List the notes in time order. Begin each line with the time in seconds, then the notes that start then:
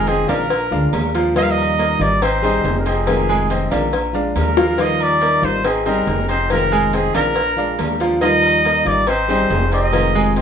Already playing: F1 C3 D#3 G#3 C4 F4
0.07 C4 G#4 C5 D#5, cowbell, low timbale, low agogo
0.27 A#1 D#3 G#3 C4 D4 F4 A#4 D5 F5, cowbell, low agogo
0.49 muted nylon-string guitar stroke, cowbell, low agogo
0.71 D2 G#3 D4 F4 D5 F5
0.92 D#2 F3 G#3 D4 F4, cowbell, low timbale, low agogo
1.15 F3 F4 F5, cowbell
1.35 D#3 F3 G3 D#4 F4 D#5 F5, cowbell, low agogo
1.43 F5
1.51 D#5
1.58 low agogo
1.78 A#3 A#4 D#5, cowbell, low timbale, low agogo
1.99 G#1 G3 D#4 F4 D5, cowbell
2.22 C4 C5 D#5, muted nylon-string guitar stroke, cowbell, low agogo
2.43 G3 C4 D#4 G#4 C5 D#5, low agogo
2.64 F1 C4 D#4 G#4, cowbell, low timbale
2.79 A#4
2.86 C4 G#4 C5 D#5, cowbell, low agogo
3.07 C3 D#3 G#3 C4 F4, cowbell, low agogo
3.29 G#3 G#4 G#5
3.50 C4 C5 D#5, cowbell, low timbale, low agogo
3.71 A#1 D#3 G#3 C4 D4 F4 D5 F5, cowbell, low agogo
3.93 muted nylon-string guitar stroke, cowbell, low agogo
4.13 G#3 D4 F4 D5 F5
4.35 D#2 F3 G#3 D4 F4 A#4, cowbell, low timbale, low agogo
4.57 F3 F4 F5, cowbell, high bongo
4.78 D#3 F3 G3 D#4 F4 D#5 F5, cowbell, low agogo
5.00 D5, low agogo
5.21 A#3 A#4 D#5, cowbell, low timbale, low agogo
5.42 G#1 G3 D#4 F4 C5, cowbell
5.64 C4 G#4 C5 D#5, muted nylon-string guitar stroke, cowbell, low agogo
5.86 G3 C4 D#4 G#4 A#4 C5 D#5, low agogo
6.07 F1 C4 D#4 G#4, cowbell, low timbale
6.28 C4 C5 D#5, cowbell, low agogo
6.50 C3 D#3 G#3 C4 F4 A#4, cowbell, low agogo
6.72 G#3 G#4 G#5
6.93 C4 G#4 C5 D#5, cowbell, low timbale, low agogo
7.14 A#1 D#3 G#3 C4 D4 F4 A#4 D5 F5, cowbell, low agogo
7.36 muted nylon-string guitar stroke, cowbell, low agogo
7.57 G#3 D4 F4 D5 F5
7.78 D#2 F3 G#3 D4 F4, cowbell, low timbale, low agogo
8.00 F3 F4 F5, cowbell
8.21 D#3 F3 G3 D#4 F4 D#5 F5, cowbell, low agogo
8.42 low agogo
8.64 A#3 A#4 D#5, cowbell, low timbale, low agogo
8.85 G#1 G3 D#4 F4 D5, cowbell
9.07 C4 C5 D#5, muted nylon-string guitar stroke, cowbell, low agogo
9.28 G3 C4 D#4 G#4 C5 D#5, low agogo
9.50 F1 C4 D#4 G#4, cowbell, low timbale
9.72 C4 C5 D#5, cowbell, low agogo
9.92 C3 D#3 G#3 C4 F4, cowbell, low agogo
10.15 G#3 G#4 G#5
10.36 C4 C5 D#5, cowbell, low timbale, low agogo